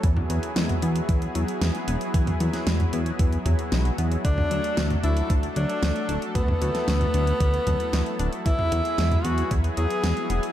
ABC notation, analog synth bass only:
X:1
M:4/4
L:1/8
Q:1/4=114
K:Emix
V:1 name="Analog synth bass" clef=bass
E,, E,, E,, E,, E,, E,, E,, E,,, | E,, E,, E,, E,, E,, E,, B,,, E,, | D,, D,, D,, D,, D,, D,, D,, D,,, | D,, D,, D,, D,, D,, D,, D,, D,,, |
E,, E,, E,, E,, E,, E,, E,, E,,, |]